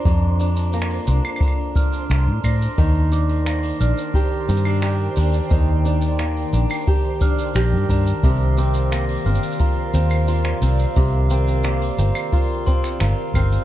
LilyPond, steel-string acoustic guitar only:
\new Staff \with { instrumentName = "Steel-string acoustic guitar" } { \time 4/4 \key ees \lydian \tempo 4 = 88 <f, d'>8 d'8 bes8 d'4 d'4 d'8 | ees8 d'8 bes8 d'8 g'8 c'16 d'16 g'8 d'8 | ees8 d'8 bes8 d'8 g'8 d'8 g'8 d'8 | c8 c'8 bes8 c'8 f'8 c'8 f'8 c'8 |
c8 c'8 bes8 c'8 f'8 c'8 f'8 c'8 | }